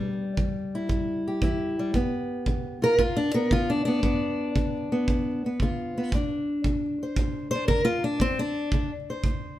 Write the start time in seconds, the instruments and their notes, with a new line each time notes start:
Already playing: steel-string acoustic guitar C3 G3
0.37 steel-string acoustic guitar E3, kick
0.75 steel-string acoustic guitar E4
0.89 steel-string acoustic guitar G2, kick
1.28 steel-string acoustic guitar G4
1.42 steel-string acoustic guitar E3 E4, kick
1.79 steel-string acoustic guitar G3
1.94 steel-string acoustic guitar G2 B3, kick
2.46 steel-string acoustic guitar D3, kick
2.82 steel-string acoustic guitar F4 A#4
2.99 steel-string acoustic guitar D2 F4, kick
3.16 steel-string acoustic guitar D4
3.34 steel-string acoustic guitar B3 A#4
3.51 steel-string acoustic guitar D3 F4, kick
3.70 steel-string acoustic guitar D4
3.85 steel-string acoustic guitar B3 D4
4.03 steel-string acoustic guitar G2 B3, kick
4.56 steel-string acoustic guitar D3, kick
4.92 steel-string acoustic guitar B3
5.08 steel-string acoustic guitar D2, kick
5.46 steel-string acoustic guitar B3
5.60 steel-string acoustic guitar D3 F4, kick
5.98 steel-string acoustic guitar B3
6.12 steel-string acoustic guitar D2 D4, kick
6.64 steel-string acoustic guitar D3, kick
7.03 steel-string acoustic guitar C5
7.16 steel-string acoustic guitar D2, kick
7.51 steel-string acoustic guitar C5
7.55 steel-string acoustic guitar D4
7.68 steel-string acoustic guitar D3 A#4, kick
7.85 steel-string acoustic guitar F4
8.04 steel-string acoustic guitar D4
8.20 steel-string acoustic guitar D2 C4, kick
8.39 steel-string acoustic guitar D4
8.72 steel-string acoustic guitar D3, kick
9.10 steel-string acoustic guitar C5
9.24 steel-string acoustic guitar D2, kick